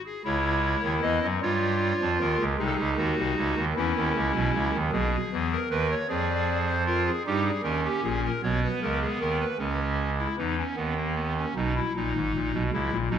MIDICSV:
0, 0, Header, 1, 2, 480
1, 0, Start_track
1, 0, Tempo, 788436
1, 147, Time_signature, 6, 3, 24, 8
1, 1586, Tempo, 778210
1, 8112, End_track
2, 0, Start_track
2, 0, Title_t, "Pipe organ"
2, 0, Program_c, 0, 19
2, 34, Note_on_c, 0, 68, 50
2, 135, Note_off_c, 0, 68, 0
2, 150, Note_on_c, 0, 73, 74
2, 151, Note_on_c, 0, 64, 59
2, 153, Note_on_c, 0, 37, 59
2, 153, Note_on_c, 0, 49, 66
2, 461, Note_off_c, 0, 37, 0
2, 461, Note_off_c, 0, 49, 0
2, 504, Note_on_c, 0, 51, 51
2, 506, Note_on_c, 0, 39, 50
2, 563, Note_off_c, 0, 73, 0
2, 609, Note_off_c, 0, 51, 0
2, 611, Note_off_c, 0, 39, 0
2, 618, Note_on_c, 0, 52, 56
2, 621, Note_on_c, 0, 40, 63
2, 622, Note_on_c, 0, 75, 71
2, 726, Note_off_c, 0, 52, 0
2, 728, Note_off_c, 0, 40, 0
2, 748, Note_on_c, 0, 54, 57
2, 749, Note_on_c, 0, 42, 59
2, 771, Note_off_c, 0, 64, 0
2, 773, Note_off_c, 0, 75, 0
2, 852, Note_off_c, 0, 54, 0
2, 853, Note_off_c, 0, 42, 0
2, 862, Note_on_c, 0, 55, 62
2, 864, Note_on_c, 0, 43, 62
2, 865, Note_on_c, 0, 65, 55
2, 865, Note_on_c, 0, 73, 69
2, 1174, Note_off_c, 0, 55, 0
2, 1175, Note_off_c, 0, 43, 0
2, 1222, Note_on_c, 0, 41, 60
2, 1225, Note_on_c, 0, 53, 69
2, 1278, Note_off_c, 0, 73, 0
2, 1327, Note_off_c, 0, 41, 0
2, 1329, Note_off_c, 0, 53, 0
2, 1338, Note_on_c, 0, 39, 60
2, 1339, Note_on_c, 0, 70, 72
2, 1340, Note_on_c, 0, 51, 66
2, 1445, Note_off_c, 0, 39, 0
2, 1446, Note_off_c, 0, 51, 0
2, 1458, Note_on_c, 0, 49, 65
2, 1459, Note_on_c, 0, 37, 60
2, 1482, Note_off_c, 0, 65, 0
2, 1489, Note_off_c, 0, 70, 0
2, 1564, Note_off_c, 0, 37, 0
2, 1564, Note_off_c, 0, 49, 0
2, 1573, Note_on_c, 0, 68, 76
2, 1574, Note_on_c, 0, 48, 60
2, 1575, Note_on_c, 0, 63, 63
2, 1577, Note_on_c, 0, 36, 57
2, 1603, Note_off_c, 0, 68, 0
2, 1621, Note_on_c, 0, 69, 62
2, 1665, Note_on_c, 0, 68, 72
2, 1668, Note_off_c, 0, 69, 0
2, 1682, Note_off_c, 0, 48, 0
2, 1684, Note_off_c, 0, 36, 0
2, 1695, Note_on_c, 0, 49, 61
2, 1698, Note_on_c, 0, 37, 59
2, 1763, Note_off_c, 0, 68, 0
2, 1803, Note_off_c, 0, 49, 0
2, 1804, Note_off_c, 0, 37, 0
2, 1809, Note_on_c, 0, 39, 59
2, 1811, Note_on_c, 0, 51, 61
2, 1812, Note_on_c, 0, 66, 75
2, 1919, Note_off_c, 0, 39, 0
2, 1921, Note_off_c, 0, 51, 0
2, 1934, Note_on_c, 0, 36, 54
2, 1937, Note_on_c, 0, 48, 58
2, 2042, Note_off_c, 0, 36, 0
2, 2043, Note_off_c, 0, 48, 0
2, 2058, Note_on_c, 0, 49, 61
2, 2059, Note_on_c, 0, 37, 63
2, 2163, Note_off_c, 0, 49, 0
2, 2164, Note_off_c, 0, 37, 0
2, 2179, Note_on_c, 0, 39, 56
2, 2179, Note_on_c, 0, 51, 64
2, 2197, Note_off_c, 0, 63, 0
2, 2229, Note_off_c, 0, 66, 0
2, 2284, Note_off_c, 0, 39, 0
2, 2284, Note_off_c, 0, 51, 0
2, 2300, Note_on_c, 0, 40, 71
2, 2300, Note_on_c, 0, 64, 74
2, 2301, Note_on_c, 0, 52, 62
2, 2303, Note_on_c, 0, 61, 67
2, 2404, Note_off_c, 0, 40, 0
2, 2405, Note_off_c, 0, 52, 0
2, 2421, Note_on_c, 0, 39, 64
2, 2425, Note_on_c, 0, 51, 62
2, 2525, Note_off_c, 0, 39, 0
2, 2527, Note_off_c, 0, 51, 0
2, 2539, Note_on_c, 0, 49, 69
2, 2540, Note_on_c, 0, 37, 66
2, 2643, Note_off_c, 0, 49, 0
2, 2644, Note_off_c, 0, 37, 0
2, 2660, Note_on_c, 0, 35, 70
2, 2660, Note_on_c, 0, 47, 70
2, 2764, Note_off_c, 0, 35, 0
2, 2764, Note_off_c, 0, 47, 0
2, 2777, Note_on_c, 0, 49, 62
2, 2780, Note_on_c, 0, 37, 64
2, 2883, Note_off_c, 0, 49, 0
2, 2884, Note_off_c, 0, 37, 0
2, 2902, Note_on_c, 0, 39, 64
2, 2902, Note_on_c, 0, 51, 71
2, 2919, Note_off_c, 0, 64, 0
2, 2921, Note_off_c, 0, 61, 0
2, 3005, Note_off_c, 0, 39, 0
2, 3005, Note_off_c, 0, 51, 0
2, 3014, Note_on_c, 0, 47, 72
2, 3015, Note_on_c, 0, 68, 85
2, 3017, Note_on_c, 0, 35, 68
2, 3165, Note_off_c, 0, 47, 0
2, 3167, Note_off_c, 0, 35, 0
2, 3263, Note_on_c, 0, 40, 66
2, 3266, Note_on_c, 0, 52, 68
2, 3383, Note_on_c, 0, 70, 62
2, 3410, Note_off_c, 0, 40, 0
2, 3412, Note_off_c, 0, 52, 0
2, 3429, Note_off_c, 0, 68, 0
2, 3484, Note_off_c, 0, 70, 0
2, 3496, Note_on_c, 0, 51, 77
2, 3497, Note_on_c, 0, 39, 72
2, 3498, Note_on_c, 0, 70, 89
2, 3499, Note_on_c, 0, 71, 66
2, 3601, Note_off_c, 0, 71, 0
2, 3623, Note_on_c, 0, 73, 69
2, 3644, Note_off_c, 0, 51, 0
2, 3645, Note_off_c, 0, 39, 0
2, 3645, Note_off_c, 0, 70, 0
2, 3723, Note_off_c, 0, 73, 0
2, 3734, Note_on_c, 0, 68, 78
2, 3735, Note_on_c, 0, 53, 75
2, 3735, Note_on_c, 0, 74, 71
2, 3736, Note_on_c, 0, 41, 72
2, 4043, Note_off_c, 0, 74, 0
2, 4086, Note_on_c, 0, 72, 72
2, 4145, Note_off_c, 0, 68, 0
2, 4192, Note_off_c, 0, 72, 0
2, 4209, Note_on_c, 0, 65, 81
2, 4209, Note_on_c, 0, 70, 68
2, 4314, Note_off_c, 0, 70, 0
2, 4332, Note_on_c, 0, 68, 68
2, 4352, Note_off_c, 0, 53, 0
2, 4353, Note_off_c, 0, 41, 0
2, 4359, Note_off_c, 0, 65, 0
2, 4436, Note_off_c, 0, 68, 0
2, 4459, Note_on_c, 0, 63, 92
2, 4459, Note_on_c, 0, 67, 71
2, 4460, Note_on_c, 0, 55, 72
2, 4462, Note_on_c, 0, 43, 67
2, 4560, Note_off_c, 0, 67, 0
2, 4569, Note_on_c, 0, 68, 64
2, 4606, Note_off_c, 0, 63, 0
2, 4607, Note_off_c, 0, 55, 0
2, 4608, Note_off_c, 0, 43, 0
2, 4674, Note_off_c, 0, 68, 0
2, 4687, Note_on_c, 0, 39, 68
2, 4688, Note_on_c, 0, 51, 66
2, 4688, Note_on_c, 0, 70, 61
2, 4690, Note_on_c, 0, 61, 78
2, 4794, Note_off_c, 0, 70, 0
2, 4815, Note_on_c, 0, 67, 53
2, 4838, Note_off_c, 0, 39, 0
2, 4839, Note_off_c, 0, 51, 0
2, 4918, Note_off_c, 0, 67, 0
2, 4936, Note_on_c, 0, 34, 72
2, 4936, Note_on_c, 0, 68, 73
2, 4938, Note_on_c, 0, 46, 67
2, 5039, Note_off_c, 0, 68, 0
2, 5070, Note_on_c, 0, 70, 57
2, 5085, Note_off_c, 0, 34, 0
2, 5086, Note_off_c, 0, 46, 0
2, 5106, Note_off_c, 0, 61, 0
2, 5167, Note_off_c, 0, 70, 0
2, 5177, Note_on_c, 0, 73, 62
2, 5179, Note_on_c, 0, 35, 66
2, 5181, Note_on_c, 0, 47, 67
2, 5182, Note_on_c, 0, 59, 73
2, 5280, Note_off_c, 0, 73, 0
2, 5307, Note_on_c, 0, 71, 61
2, 5327, Note_off_c, 0, 35, 0
2, 5329, Note_off_c, 0, 47, 0
2, 5406, Note_off_c, 0, 71, 0
2, 5420, Note_on_c, 0, 70, 64
2, 5421, Note_on_c, 0, 37, 69
2, 5425, Note_on_c, 0, 49, 62
2, 5522, Note_off_c, 0, 70, 0
2, 5541, Note_on_c, 0, 68, 64
2, 5569, Note_off_c, 0, 37, 0
2, 5572, Note_off_c, 0, 49, 0
2, 5644, Note_off_c, 0, 68, 0
2, 5654, Note_on_c, 0, 39, 69
2, 5656, Note_on_c, 0, 51, 66
2, 5656, Note_on_c, 0, 70, 64
2, 5762, Note_off_c, 0, 70, 0
2, 5779, Note_on_c, 0, 71, 55
2, 5803, Note_off_c, 0, 59, 0
2, 5806, Note_off_c, 0, 39, 0
2, 5808, Note_off_c, 0, 51, 0
2, 5884, Note_off_c, 0, 71, 0
2, 5890, Note_on_c, 0, 61, 56
2, 5892, Note_on_c, 0, 37, 58
2, 5894, Note_on_c, 0, 49, 64
2, 6208, Note_off_c, 0, 61, 0
2, 6262, Note_on_c, 0, 64, 45
2, 6314, Note_off_c, 0, 37, 0
2, 6316, Note_off_c, 0, 49, 0
2, 6369, Note_off_c, 0, 64, 0
2, 6379, Note_on_c, 0, 52, 59
2, 6381, Note_on_c, 0, 63, 54
2, 6384, Note_on_c, 0, 40, 63
2, 6488, Note_off_c, 0, 63, 0
2, 6505, Note_on_c, 0, 61, 48
2, 6532, Note_off_c, 0, 52, 0
2, 6536, Note_off_c, 0, 40, 0
2, 6611, Note_off_c, 0, 61, 0
2, 6617, Note_on_c, 0, 59, 56
2, 6622, Note_on_c, 0, 51, 65
2, 6623, Note_on_c, 0, 39, 62
2, 6727, Note_off_c, 0, 59, 0
2, 6742, Note_on_c, 0, 58, 51
2, 6850, Note_off_c, 0, 58, 0
2, 6860, Note_on_c, 0, 59, 50
2, 6970, Note_off_c, 0, 59, 0
2, 6991, Note_on_c, 0, 61, 58
2, 7041, Note_off_c, 0, 51, 0
2, 7042, Note_off_c, 0, 39, 0
2, 7096, Note_off_c, 0, 61, 0
2, 7104, Note_on_c, 0, 35, 64
2, 7107, Note_on_c, 0, 63, 59
2, 7109, Note_on_c, 0, 47, 61
2, 7213, Note_off_c, 0, 63, 0
2, 7235, Note_on_c, 0, 64, 56
2, 7256, Note_off_c, 0, 35, 0
2, 7259, Note_off_c, 0, 47, 0
2, 7338, Note_off_c, 0, 64, 0
2, 7355, Note_on_c, 0, 63, 64
2, 7356, Note_on_c, 0, 34, 55
2, 7357, Note_on_c, 0, 46, 55
2, 7458, Note_off_c, 0, 34, 0
2, 7458, Note_off_c, 0, 46, 0
2, 7474, Note_on_c, 0, 32, 56
2, 7474, Note_on_c, 0, 44, 53
2, 7576, Note_off_c, 0, 44, 0
2, 7577, Note_off_c, 0, 32, 0
2, 7598, Note_on_c, 0, 34, 53
2, 7598, Note_on_c, 0, 46, 54
2, 7698, Note_off_c, 0, 34, 0
2, 7698, Note_off_c, 0, 46, 0
2, 7713, Note_on_c, 0, 47, 49
2, 7714, Note_on_c, 0, 35, 46
2, 7765, Note_off_c, 0, 63, 0
2, 7815, Note_off_c, 0, 35, 0
2, 7815, Note_off_c, 0, 47, 0
2, 7831, Note_on_c, 0, 37, 60
2, 7832, Note_on_c, 0, 49, 56
2, 7835, Note_on_c, 0, 64, 69
2, 7933, Note_off_c, 0, 37, 0
2, 7934, Note_off_c, 0, 49, 0
2, 7946, Note_on_c, 0, 34, 49
2, 7946, Note_on_c, 0, 46, 53
2, 7981, Note_off_c, 0, 64, 0
2, 8049, Note_off_c, 0, 46, 0
2, 8050, Note_off_c, 0, 34, 0
2, 8059, Note_on_c, 0, 35, 54
2, 8060, Note_on_c, 0, 63, 70
2, 8063, Note_on_c, 0, 47, 55
2, 8112, Note_off_c, 0, 35, 0
2, 8112, Note_off_c, 0, 47, 0
2, 8112, Note_off_c, 0, 63, 0
2, 8112, End_track
0, 0, End_of_file